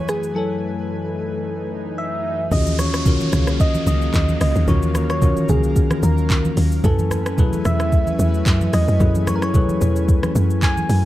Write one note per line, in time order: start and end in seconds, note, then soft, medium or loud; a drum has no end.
0.00 2.48 F#2 medium
0.00 2.48 E3 medium
0.00 0.31 F#3 medium
0.00 2.48 A3 medium
0.00 0.31 E4 medium
0.00 0.32 G#4 medium
0.00 0.32 A4 medium
0.00 0.33 B4 medium
0.00 2.48 B4 medium
0.00 0.11 C#5 loud
0.00 2.48 G#5 medium
0.08 0.36 G#4 medium
0.08 cross-stick medium
0.08 shaker medium
0.23 shaker medium
0.34 2.47 F#3 medium
0.34 2.47 E4 medium
0.34 1.94 A4 medium
0.34 2.48 A4 medium
0.34 2.48 G#5 medium
0.34 swell medium
0.38 2.49 C#5 medium
1.98 2.48 E5 loud
2.51 3.29 D#2 loud
2.51 2.96 D#3 medium
2.51 6.80 D#3 medium
2.51 6.80 F#3 medium
2.51 6.80 A#3 medium
2.51 11.05 C#4 medium
2.51 2.96 C#4 medium
2.51 2.96 F4 medium
2.51 2.97 F#4 medium
2.51 4.66 G#4 medium
2.51 2.97 G#4 medium
2.51 2.77 D#5 loud
2.51 6.80 F5 medium
2.51 kick loud
2.51 downlifter medium
2.51 low conga medium
2.51 shaker medium
2.66 high conga medium
2.66 shaker medium
2.79 3.56 C#5 loud
2.79 cross-stick medium
2.79 high conga medium
2.79 shaker medium
2.94 cross-stick loud
2.94 shaker medium
3.05 3.92 D#3 medium
3.05 3.93 C#4 medium
3.05 3.93 F4 medium
3.05 3.93 F#4 medium
3.05 3.94 A#4 medium
3.05 kick loud
3.05 low conga medium
3.05 shaker medium
3.20 high conga medium
3.20 shaker medium
3.33 3.79 C#2 medium
3.33 cross-stick medium
3.33 high conga medium
3.33 low conga medium
3.33 shaker medium
3.47 cross-stick loud
3.47 shaker medium
3.60 3.85 D#5 loud
3.60 kick loud
3.60 shaker medium
3.75 high conga medium
3.75 shaker medium
3.87 4.10 C#2 medium
3.87 4.37 D#5 loud
3.87 high conga medium
3.87 shaker loud
4.02 shaker soft
4.14 4.37 D#2 medium
4.14 kick loud
4.14 clap medium
4.14 shaker medium
4.29 high conga medium
4.29 shaker medium
4.41 4.54 C#2 medium
4.41 4.66 D#5 loud
4.41 cross-stick loud
4.41 open hi-hat medium
4.41 shaker medium
4.55 4.66 D#2 medium
4.55 shaker medium
4.67 5.45 D#2 loud
4.67 5.12 D#3 medium
4.67 5.12 C#4 medium
4.67 5.12 F4 medium
4.67 5.13 F#4 medium
4.67 6.82 A#4 medium
4.67 5.13 A#4 medium
4.67 5.07 C#5 loud
4.67 kick loud
4.67 low conga medium
4.67 shaker medium
4.82 high conga medium
4.82 shaker medium
4.95 cross-stick loud
4.95 high conga medium
4.95 shaker loud
5.10 5.51 C#5 loud
5.10 cross-stick loud
5.10 shaker medium
5.21 6.09 D#3 medium
5.21 6.09 C#4 medium
5.21 6.09 F4 medium
5.21 6.09 F#4 medium
5.21 6.10 A#4 medium
5.21 kick loud
5.21 low conga medium
5.21 shaker medium
5.37 high conga medium
5.37 shaker medium
5.49 5.95 C#2 medium
5.49 6.05 G#4 loud
5.49 high conga medium
5.49 low conga medium
5.49 shaker medium
5.63 shaker medium
5.76 kick loud
5.76 shaker medium
5.91 cross-stick loud
5.91 high conga medium
5.91 shaker medium
6.03 6.49 D#2 loud
6.03 6.57 A#4 medium
6.03 high conga medium
6.03 shaker medium
6.18 shaker soft
6.30 kick loud
6.30 clap medium
6.30 shaker medium
6.45 high conga medium
6.45 shaker medium
6.57 6.80 D#2 medium
6.57 open hi-hat medium
6.57 shaker medium
6.72 shaker medium
6.84 7.61 F#2 loud
6.84 7.28 F#3 medium
6.84 11.05 F#3 medium
6.84 11.05 A3 medium
6.84 11.05 E4 medium
6.84 7.28 E4 medium
6.84 7.67 A4 loud
6.84 7.29 A4 medium
6.84 11.05 B4 medium
6.84 7.29 B4 medium
6.84 11.05 G#5 medium
6.84 7.29 G#5 medium
6.84 kick loud
6.84 low conga medium
6.84 shaker medium
6.99 high conga medium
6.99 shaker medium
7.11 cross-stick medium
7.11 high conga medium
7.11 shaker medium
7.26 cross-stick loud
7.26 shaker medium
7.38 8.25 F#3 medium
7.38 8.25 E4 medium
7.38 8.25 G#4 medium
7.38 8.26 A4 medium
7.38 8.26 B4 medium
7.38 kick loud
7.38 low conga medium
7.38 shaker medium
7.53 high conga medium
7.53 shaker medium
7.65 8.11 E2 loud
7.65 8.73 E5 loud
7.65 cross-stick medium
7.65 high conga medium
7.65 low conga medium
7.65 shaker medium
7.80 cross-stick loud
7.80 shaker medium
7.92 kick loud
7.92 shaker medium
8.07 high conga medium
8.07 shaker medium
8.19 8.42 E2 loud
8.19 high conga medium
8.19 shaker loud
8.34 shaker soft
8.46 8.69 F#2 medium
8.46 kick loud
8.46 clap medium
8.46 shaker medium
8.61 high conga medium
8.61 shaker medium
8.73 8.86 E2 medium
8.73 9.30 D#5 loud
8.73 cross-stick medium
8.73 open hi-hat medium
8.73 shaker medium
8.88 8.99 F#2 medium
8.88 shaker medium
9.00 9.77 F#2 loud
9.00 9.44 F#3 medium
9.00 9.45 E4 medium
9.00 9.45 G#4 medium
9.00 9.45 A4 medium
9.00 9.45 B4 medium
9.00 kick loud
9.00 low conga medium
9.00 shaker medium
9.15 high conga medium
9.15 shaker medium
9.27 9.37 C#5 medium
9.27 cross-stick loud
9.27 high conga medium
9.27 shaker loud
9.36 9.45 A#4 medium
9.42 10.36 C#5 loud
9.42 cross-stick loud
9.42 shaker medium
9.54 10.41 F#3 medium
9.54 10.41 E4 medium
9.54 10.42 G#4 medium
9.54 10.42 A4 medium
9.54 10.42 B4 medium
9.54 kick loud
9.54 low conga medium
9.54 shaker medium
9.69 high conga medium
9.69 shaker medium
9.81 10.28 E2 medium
9.81 high conga medium
9.81 low conga medium
9.81 shaker loud
9.96 shaker medium
10.08 kick loud
10.08 shaker medium
10.23 cross-stick loud
10.23 high conga medium
10.23 shaker soft
10.35 10.82 F#2 medium
10.35 high conga medium
10.35 shaker loud
10.50 shaker soft
10.62 11.05 G#5 loud
10.62 kick loud
10.62 clap medium
10.62 shaker medium
10.77 high conga medium
10.77 shaker soft
10.89 11.05 F#2 medium
10.89 open hi-hat medium
10.89 shaker medium